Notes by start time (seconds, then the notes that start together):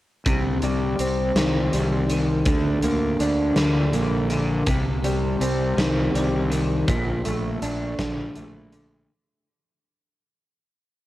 0.26 C2 C3, kick, closed hi-hat
0.62 C2 G3, closed hi-hat
0.99 C2 C4, closed hi-hat
1.35 C2 D#3, snare, closed hi-hat
1.73 C2 G3, closed hi-hat
2.10 D#3, closed hi-hat
2.46 D2 D3, kick, closed hi-hat
2.82 D2 A#3, closed hi-hat
3.19 D2 D4, closed hi-hat
3.56 D2 D3, snare, closed hi-hat
3.93 A#1 A#3, closed hi-hat
4.30 D3, closed hi-hat
4.66 C2 C3, kick, closed hi-hat
5.02 C2 G3, closed hi-hat
5.40 C2 C4, closed hi-hat
5.77 C2 D#3, snare, closed hi-hat
6.14 C2 G3, closed hi-hat
6.50 D#3, closed hi-hat
6.88 A#1 A#2, kick, closed hi-hat
7.25 A#1 A3, closed hi-hat
7.62 A#1 D4, closed hi-hat
7.99 A#1 D3, kick, snare, closed hi-hat
8.34 A#1 A3, closed hi-hat
8.72 D3, closed hi-hat